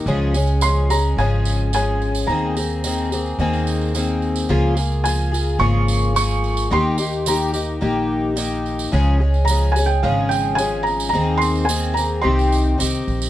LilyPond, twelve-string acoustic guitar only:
\new Staff \with { instrumentName = "Twelve-string acoustic guitar" } { \time 4/4 \key des \lydian \tempo 4 = 108 <des f aes des' aes'>8 <aes des' aes'>8 <f aes des' aes'>8 <aes des' aes'>8 <des f aes des' aes'>4 <f aes des' aes'>4 | <ees bes c' aes'>8 <bes c' aes'>8 <ees bes c' aes'>8 <bes c' aes'>8 <ees bes c' aes'>4 <ees bes c' aes'>4 | <des f bes f' aes'>8 <bes f' aes'>8 <f bes f' aes'>8 <bes f' aes'>8 <des f bes f' aes'>4 <f bes f' aes'>4 | <ees bes ees' g'>8 <bes ees' g'>8 <ees bes ees' g'>8 <bes ees' g'>8 <ees bes ees' g'>4 <ees bes ees' g'>4 |
<des f aes des' aes'>8 <aes des' aes'>8 <f aes des' aes'>8 <aes des' aes'>8 <des f aes des' aes'>4 <f aes des' aes'>4 | <ees bes c' aes'>4 <ees bes c' aes'>8 <bes c' aes'>8 <c ees c' ees' g'>4 <ees c' ees' g'>4 | }